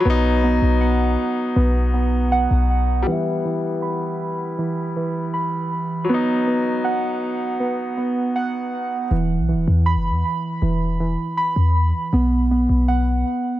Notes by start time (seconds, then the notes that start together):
0.00 F#3
0.05 B1 B3
0.10 D#4
0.44 B3
0.62 B1
0.81 F#5
1.56 B1 B3
1.94 B3
2.32 F#5
2.51 B1
3.02 G3
3.07 E3 B3
3.12 E4
3.45 E3
3.82 B5
4.58 E3
4.96 E3
5.34 B5
6.04 F#3
6.09 B3
6.14 D#4
6.47 B3
6.84 F#5
7.60 B3
7.97 B3
8.36 F#5
9.11 E1 E3
9.39 B1
9.49 E3
9.53 E1
9.68 E2
9.86 B5
9.96 F#1
10.10 E2
10.62 E1 E3
11.00 E3
11.37 B5
11.56 E2
12.13 B1 B3
12.51 B3
12.69 B1
12.88 F#5